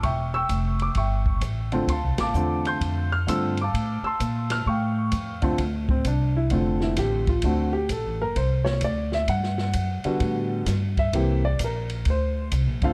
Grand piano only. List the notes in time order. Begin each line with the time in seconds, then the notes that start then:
0.03 E5 G5 C#6
0.34 G5 C#6 E6
0.82 D6
0.97 E5 G5 C#6
1.72 D3 A3 C4 F4
1.90 F5 A5 C6
2.20 F5 A5 D6
2.35 D3 A3 C4 F4
2.67 C6 G6
3.12 F6
3.27 D3 A3 C4 F4 E6
3.61 F5 A5 D6
4.04 A5 C6 E6
4.52 F6
4.67 F5 G5 C#6
5.42 D3 A3 C4 F4
5.90 C4
6.07 D4
6.36 E4
6.51 D3 A3 C4 F4
6.83 E4
6.99 G4
7.29 F4
7.44 D3 A3 C4 F#4
7.73 G4
7.92 A4
8.22 A#4
8.37 C5
8.65 C#5
8.84 D5
9.14 E5
9.29 F#5
10.05 D3 G3 B3 F#4
10.99 E5
11.14 E3 A#3 C4 G4
11.45 D5
11.64 A#4
12.10 C5
12.83 D3 A3 C4 F4 F5